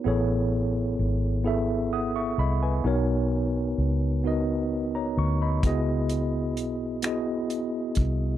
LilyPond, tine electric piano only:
\new Staff \with { instrumentName = "Tine electric piano" } { \time 6/8 \key b \major \tempo 4. = 43 << { r2 <fis'' dis'''>16 <e'' cis'''>16 <dis'' b''>16 <b' gis''>16~ | <b' gis''>16 r2 <cis'' ais''>16 cis'''16 <dis'' b''>16~ | <dis'' b''>16 r2 r8. | } \\ { <b e' gis' a' cis''>4 r8 <b e' gis' a' e''>4 r8 | <b dis' fis' ais' cis''>4 r8 <b dis' fis' ais' dis''>4 r8 | <b e' fis' gis' dis''>4 r8 <b e' fis' gis' dis''>4 r8 | } >> }